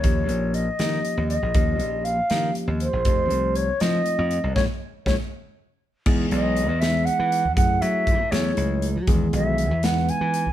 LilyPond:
<<
  \new Staff \with { instrumentName = "Flute" } { \time 6/8 \key ees \mixolydian \tempo 4. = 80 des''4 ees''4. ees''8~ | ees''4 f''4 r8 c''8~ | c''4 des''8 ees''4. | des''8 r8 des''8 r4. |
\key e \major r8 dis''4 e''8 fis''4 | fis''8 e''4 cis''4 r8 | r8 e''4 fis''8 gis''4 | }
  \new Staff \with { instrumentName = "Tine electric piano" } { \time 6/8 \key ees \mixolydian <f bes des' ees' g'>4 r8 <f bes des' ees' g'>4 r8 | <f bes des' ees' g'>4 r8 <f bes des' ees' g'>4 r8 | <f a c' ees' g'>4 r8 <f a c' ees' f'>4 r8 | <aes bes des'>8 r8 <aes bes des'>8 r4. |
\key e \major <e gis b dis' gis'>4 r8 <e gis b dis' gis'>4 r8 | <fis a cis' e' gis'>4 r8 <fis a cis' e' gis'>4 r8 | <dis e gis b gis'>4 r8 <e gis b dis' b'>4 r8 | }
  \new Staff \with { instrumentName = "Slap bass" } { \clef bass \time 6/8 \key ees \mixolydian ees,8 bes,,4 ees8 r16 ees,8 bes,,16 | ees,8 bes,,4 ees8 r16 ees,8 bes,,16 | f,8 c,4 f8 r16 f,8 c,16 | bes,,16 r8. bes,,16 r4. r16 |
\key e \major e,8 b,,8. e,4 e8 e,16 | fis,8 fis8. a,16 e,8 cis,8. fis16 | e,8 b,,8. e,4 e8 cis,16 | }
  \new DrumStaff \with { instrumentName = "Drums" } \drummode { \time 6/8 <hh bd>8 hh8 hh8 <hh sn>8 hh8 hh8 | <hh bd>8 hh8 hh8 <hh sn>8 hh8 hh8 | <hh bd>8 hh8 hh8 <hh sn>8 hh8 hh8 | <bd sn>4 <bd sn>8 r4. |
<cymc bd>8 hh8 hh8 <hh sn>8 hh8 hh8 | <hh bd>8 hh8 <hh bd>8 <hh sn>8 hh8 hh8 | <hh bd>8 hh8 hh8 <hh sn>8 hh8 hh8 | }
>>